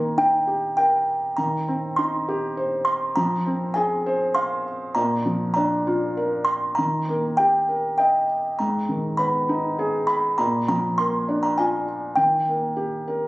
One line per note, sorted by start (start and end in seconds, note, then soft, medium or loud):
0.00 1.34 D#3 medium
0.00 1.04 A#3 soft
0.00 0.20 A#5 medium
0.18 1.34 D#4 soft
0.18 0.76 G5 medium
0.47 1.35 G4 soft
0.77 1.36 A#4 soft
0.77 1.33 G5 medium
1.37 3.12 D#3 medium
1.37 1.99 A#5 medium
1.68 2.83 C4 soft
1.96 3.13 D#4 medium
1.96 2.82 C6 medium
2.28 3.14 G4 medium
2.57 3.15 C5 soft
2.85 2.99 C6 medium
3.16 4.92 F3 medium
3.16 3.72 A#5 medium
3.46 4.62 C4 soft
3.74 4.92 G#4 medium
3.74 4.31 G#5 medium
4.06 4.93 C5 medium
4.35 4.94 F5 medium
4.35 4.91 C6 medium
4.95 6.74 A#2 medium
4.95 5.53 A#5 medium
5.26 6.44 F3 soft
5.54 6.75 D4 soft
5.54 6.49 A#5 medium
5.87 6.76 F4 soft
6.17 6.77 A#4 soft
6.45 6.78 C6 medium
6.75 8.55 D#3 medium
6.75 7.39 A#5 medium
7.08 8.25 A#3 soft
7.37 8.56 G4 soft
7.37 7.96 G5 medium
7.69 8.56 A#4 soft
7.98 8.57 D#5 soft
7.98 8.54 G5 medium
8.59 10.35 G#2 medium
8.59 9.21 A#5 medium
8.89 10.05 D#3 soft
9.17 10.35 B3 soft
9.17 10.06 B5 medium
9.49 10.36 D#4 soft
9.79 10.37 G#4 soft
10.07 10.36 B5 medium
10.38 12.13 A#2 medium
10.38 10.66 A#5 medium
10.68 11.84 F3 soft
10.68 10.99 A#5 medium
10.98 12.14 A#3 soft
10.98 11.44 C6 medium
11.29 12.15 D4 medium
11.43 11.58 A#5 medium
11.58 12.16 F4 soft
11.58 12.19 G#5 medium
12.16 13.28 D#3 medium
12.16 13.28 G5 medium
12.48 13.28 A#3 soft
12.77 13.28 G4 soft
13.08 13.28 A#4 soft